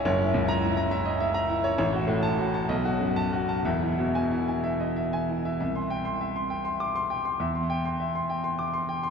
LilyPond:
<<
  \new Staff \with { instrumentName = "Grand piano" } { \time 6/8 \key e \major \tempo 4. = 67 << { r8. ais''8 r4. r16 | r8. a''8 r4 a''8 r16 | r8. gis''8 r4. r16 | \key c \major r2 d'''16 r8. |
r2 d'''16 r8. | } \\ { cis''16 e'16 cis,8 e'16 ais''16 e''16 dis''16 e''16 ais''16 e'16 cis''16 | cis''16 fis'16 a,8 fis'16 a''16 dis''16 fis'16 fis,8 fis'16 a''16 | e''16 e'16 b,8 e'16 gis''16 e''16 dis''16 e''16 gis''16 e'16 e''16 | e''16 c'''16 g''16 c'''16 e''16 c'''16 g''16 c'''8 c'''16 g''16 c'''16 |
e''16 c'''16 g''16 c'''16 e''16 c'''16 g''16 c'''8 c'''16 g''16 c'''16 | } >> }
  \new Staff \with { instrumentName = "Grand piano" } { \clef bass \time 6/8 \key e \major fis,,2. | a,,4. b,,4. | <e,, e,>2. | \key c \major c,2. |
e,2. | }
>>